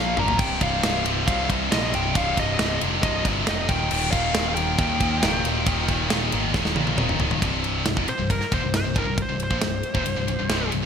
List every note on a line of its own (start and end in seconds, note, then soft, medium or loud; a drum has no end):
0.00 0.16 A#1 medium
0.00 0.16 A#2 loud
0.00 0.17 F3 loud
0.00 0.17 A#3 loud
0.00 0.19 F5 loud
0.17 0.39 G#1 medium
0.17 0.38 A#2 loud
0.17 0.39 F3 medium
0.17 0.39 A#3 loud
0.17 0.39 A#5 loud
0.17 mid tom medium
0.28 floor tom loud
0.39 0.60 C1 medium
0.39 0.61 C2 loud
0.39 0.61 G2 medium
0.39 0.62 C3 medium
0.39 0.62 G5 medium
0.39 kick loud
0.39 crash medium
0.61 0.82 C1 medium
0.61 0.83 C2 medium
0.61 0.83 G2 loud
0.61 0.84 C3 medium
0.61 1.03 F5 medium
0.61 kick loud
0.61 ride medium
0.83 1.25 C1 medium
0.83 1.05 C2 medium
0.83 1.05 G2 medium
0.83 1.06 C3 loud
0.83 snare loud
0.83 ride loud
1.06 1.27 C2 medium
1.06 1.27 G2 medium
1.06 1.28 C3 medium
1.06 ride medium
1.27 1.48 C2 medium
1.27 1.70 C2 medium
1.27 1.49 G2 loud
1.27 1.49 C3 loud
1.27 1.48 F5 loud
1.27 kick loud
1.27 ride loud
1.49 1.70 C2 medium
1.49 1.71 G2 loud
1.49 1.71 C3 medium
1.49 kick medium
1.49 ride medium
1.71 1.92 A#1 medium
1.71 1.92 C2 medium
1.71 1.93 G2 loud
1.71 1.93 C3 loud
1.71 1.92 D#5 loud
1.71 snare loud
1.71 ride loud
1.93 2.15 C1 medium
1.93 2.14 C2 loud
1.93 2.15 G2 medium
1.93 2.15 C3 loud
1.93 2.16 G5 loud
1.93 ride medium
2.15 2.36 C1 medium
2.15 2.36 C2 loud
2.15 2.37 G2 loud
2.15 2.37 C3 loud
2.15 2.38 F5 loud
2.15 kick loud
2.15 ride loud
2.37 2.58 C1 medium
2.37 2.58 C2 loud
2.37 2.59 G2 loud
2.37 2.59 C3 loud
2.37 2.79 D#5 medium
2.37 kick medium
2.37 ride medium
2.59 2.80 C1 medium
2.59 2.80 C2 loud
2.59 2.80 G2 medium
2.59 2.80 C3 loud
2.59 snare loud
2.59 ride loud
2.81 3.02 F1 medium
2.81 3.02 C2 medium
2.81 3.02 G2 loud
2.81 3.03 C3 medium
2.81 ride medium
3.03 3.24 C1 medium
3.03 3.24 C2 loud
3.03 3.24 G2 loud
3.03 3.25 C3 loud
3.03 3.24 D#5 loud
3.03 kick loud
3.03 ride loud
3.25 3.46 G1 medium
3.25 3.46 C2 medium
3.25 3.47 G2 medium
3.25 3.47 C3 medium
3.25 kick medium
3.25 ride medium
3.47 3.68 F1 loud
3.47 3.68 C2 loud
3.47 3.68 G2 loud
3.47 3.68 C3 loud
3.47 3.71 D#5 loud
3.47 snare loud
3.47 ride loud
3.69 3.90 D#1 medium
3.69 3.91 D#2 loud
3.69 3.91 A#2 loud
3.69 3.92 D#3 loud
3.69 4.11 G5 loud
3.69 kick loud
3.69 ride medium
3.91 4.12 D#1 loud
3.91 4.12 D#2 loud
3.91 4.12 A#2 loud
3.91 4.13 D#3 loud
3.91 crash loud
4.12 4.34 D#1 medium
4.12 4.34 D#2 medium
4.12 4.33 A#2 loud
4.12 4.35 D#3 medium
4.12 4.47 F5 loud
4.12 kick medium
4.12 ride medium
4.34 4.77 D#1 medium
4.34 4.55 D#2 medium
4.34 4.55 A#2 loud
4.34 4.56 D#3 loud
4.34 snare loud
4.34 ride loud
4.49 4.55 F5 medium
4.55 4.77 D#2 medium
4.55 4.77 A#2 medium
4.55 4.77 D#3 medium
4.55 6.93 G5 loud
4.55 ride medium
4.78 4.98 D#2 medium
4.78 5.20 D#2 medium
4.78 4.98 A#2 medium
4.78 4.99 D#3 loud
4.78 kick loud
4.78 ride loud
4.99 5.20 D#2 medium
4.99 5.20 A#2 loud
4.99 5.21 D#3 loud
4.99 kick medium
4.99 ride medium
5.21 5.44 C#1 medium
5.21 5.42 D#2 medium
5.21 5.42 A#2 loud
5.21 5.43 D#3 loud
5.21 snare loud
5.21 ride loud
5.43 5.65 D#1 medium
5.43 5.64 D#2 medium
5.43 5.64 A#2 loud
5.43 5.65 D#3 loud
5.43 ride medium
5.65 5.87 D#1 loud
5.65 5.86 D#2 medium
5.65 5.87 A#2 loud
5.65 5.88 D#3 loud
5.65 kick loud
5.65 ride loud
5.87 6.10 D#1 medium
5.87 6.09 D#2 loud
5.87 6.09 A#2 medium
5.87 6.09 D#3 loud
5.87 kick medium
5.87 ride medium
6.10 6.32 D#1 medium
6.10 6.30 D#2 medium
6.10 6.30 A#2 medium
6.10 6.31 D#3 loud
6.10 snare loud
6.10 ride loud
6.31 6.54 G#1 medium
6.31 6.52 D#2 medium
6.31 6.53 A#2 medium
6.31 6.53 D#3 loud
6.31 ride medium
6.54 6.75 D#1 medium
6.54 6.74 D#2 medium
6.54 6.75 A#2 medium
6.54 6.75 D#3 loud
6.54 kick loud
6.54 snare medium
6.65 snare medium
6.75 6.97 A#1 medium
6.75 6.97 D#2 medium
6.75 6.97 A#2 medium
6.75 6.98 D#3 loud
6.75 high tom medium
6.87 high tom medium
6.98 7.18 D#1 medium
6.98 7.18 D#2 medium
6.98 7.19 A#2 loud
6.98 7.19 D#3 loud
6.98 mid tom loud
7.09 mid tom medium
7.19 7.40 C#1 medium
7.19 7.40 D#2 medium
7.19 7.41 A#2 loud
7.19 7.41 D#3 loud
7.19 floor tom medium
7.31 floor tom loud
7.41 7.83 C1 medium
7.41 7.85 C2 medium
7.41 7.85 G2 medium
7.41 7.85 C3 loud
7.41 kick medium
7.41 ride medium
7.64 ride medium
7.86 7.96 C1 medium
7.86 7.97 C2 medium
7.86 7.97 G2 medium
7.86 snare loud
7.86 ride loud
7.97 8.07 F1 medium
7.97 8.07 F2 medium
7.97 8.08 C3 medium
7.97 kick loud
8.08 8.30 C5 medium
8.08 muted distorted electric guitar stroke medium
8.08 muted picked electric bass stroke soft
8.08 ride medium
8.19 8.30 C1 medium
8.19 8.29 C2 medium
8.19 8.29 G2 medium
8.30 8.41 C1 medium
8.30 8.40 C2 medium
8.30 8.41 G2 medium
8.30 8.52 A#4 medium
8.30 kick medium
8.30 ride loud
8.41 muted distorted electric guitar stroke medium
8.41 muted picked electric bass stroke soft
8.41 snare soft
8.52 8.62 D#1 medium
8.52 8.63 D#2 medium
8.52 8.63 A#2 loud
8.52 8.74 C5 medium
8.52 kick medium
8.52 ride medium
8.63 8.84 C1 medium
8.63 8.81 C2 medium
8.63 8.81 G2 medium
8.74 8.97 C5 medium
8.74 snare loud
8.74 ride loud
8.85 8.96 C1 medium
8.85 8.95 C2 medium
8.85 8.96 G2 medium
8.96 9.07 C1 medium
8.96 9.05 C2 medium
8.96 9.05 G2 loud
8.96 9.19 A#4 medium
8.96 kick medium
8.96 ride medium
9.06 9.28 C1 medium
9.06 9.24 C2 medium
9.06 9.25 G2 medium
9.18 kick loud
9.18 ride medium
9.22 9.42 C5 medium
9.29 9.50 C1 medium
9.29 9.47 C2 medium
9.29 9.47 G2 medium
9.40 10.70 C5 loud
9.40 ride medium
9.50 9.61 A#1 medium
9.50 9.61 A#2 medium
9.50 9.61 F3 medium
9.50 kick loud
9.61 9.83 C1 medium
9.61 9.79 C2 medium
9.61 9.80 G2 medium
9.61 snare loud
9.61 ride medium
9.83 ride medium
9.94 10.05 D#1 medium
9.94 10.04 D#2 medium
9.94 10.05 A#2 medium
9.94 kick loud
10.04 10.16 C1 medium
10.04 10.15 C2 medium
10.04 10.15 G2 medium
10.04 ride medium
10.16 10.27 C1 medium
10.16 10.26 C2 medium
10.16 10.26 G2 medium
10.27 10.38 C1 medium
10.27 10.38 C2 medium
10.27 10.38 G2 medium
10.27 ride medium
10.39 10.48 C1 medium
10.39 10.49 C2 medium
10.39 10.49 G2 medium
10.49 10.70 C1 medium
10.49 10.71 C2 medium
10.49 10.71 G2 loud
10.49 10.72 C3 medium
10.49 snare loud
10.49 ride medium
10.72 10.82 C1 medium
10.72 10.82 C2 medium
10.72 10.82 G2 medium
10.72 ride medium
10.83 10.86 C2 medium
10.83 10.86 G2 medium